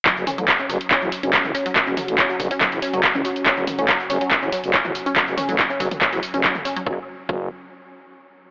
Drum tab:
HH |x-oxx-oxx-oxx-ox|x-oxx-oxxooxx-ox|x-oxx-oxx-oxx-ox|x-oxx-oxxooxx-ox|
TB |xxxxxxxxxxxxxxxx|xxxxxxxxxxxxxxxx|xxxxxxxxxxxxxxxx|xxxxxxxxxxxxxxxx|
CP |x---x---x---x---|x---x---x---x---|x---x---x---x---|x---x---x---x---|
T2 |--o----------o--|--o----------o--|--o----------o--|--o----o-----o--|
BD |o---o---o---o---|o---o-o-o---o---|o---o---o---o---|o---o-o-o---o---|

HH |----------------|
TB |----------------|
CP |----------------|
T2 |----------------|
BD |o---o-----------|